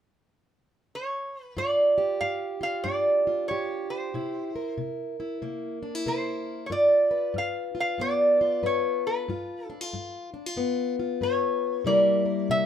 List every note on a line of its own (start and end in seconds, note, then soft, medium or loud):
0.95 1.44 C#5 medium
1.44 1.58 B4 medium
1.57 2.16 G2 medium
1.57 2.60 F4 medium
1.57 2.20 D5 medium
1.98 3.51 G4 medium
2.21 2.80 G2 medium
2.21 2.59 F5 loud
2.61 3.25 F4 medium
2.61 2.86 F5 loud
2.84 3.44 G2 medium
2.84 4.10 D4 medium
2.84 3.48 D5 medium
3.27 4.11 F4 medium
3.48 4.09 G2 medium
3.48 4.55 G4 medium
3.48 3.86 C#5 medium
3.90 4.74 C5 medium
4.14 4.73 C3 medium
4.14 5.19 E4 medium
4.56 6.05 A#4 medium
4.78 5.37 C3 medium
5.20 5.82 E4 medium
5.42 6.01 C3 medium
5.42 6.70 A#3 medium
5.83 5.95 D4 medium
5.95 6.70 E4 soft
6.06 6.66 C3 medium
6.06 6.68 A#4 medium
6.06 6.66 C5 medium
6.66 7.30 G2 medium
6.66 6.71 C#5 medium
6.71 7.74 F4 medium
6.71 7.37 D5 medium
7.11 8.62 B4 medium
7.34 7.94 G2 medium
7.38 7.78 F5 medium
7.75 8.39 F4 medium
7.80 8.02 F5 medium
7.98 8.58 G2 medium
7.98 9.25 B3 medium
7.98 8.66 D5 loud
8.41 9.25 F4 medium
8.63 9.23 G2 medium
8.63 9.25 B4 medium
8.63 9.03 C#5 medium
9.07 9.65 B4 medium
9.28 9.88 G2 medium
9.28 9.69 F4 medium
9.65 9.89 A4 medium
9.70 9.81 D4 medium
9.81 10.33 F4 medium
9.93 10.52 G2 medium
10.34 10.46 D4 medium
10.46 10.98 F4 medium
10.56 11.16 G2 medium
10.56 11.83 B3 medium
10.99 11.83 F4 medium
11.21 11.81 G2 medium
11.21 11.83 B4 medium
11.21 11.82 C#5 medium
11.84 12.45 C3 medium
11.84 12.66 G3 medium
11.84 12.66 A#3 medium
11.84 12.66 E4 medium
11.84 12.25 A#4 medium
11.84 12.50 D5 medium
12.26 12.66 A#4 medium
12.50 12.66 C3 medium
12.50 12.66 E5 loud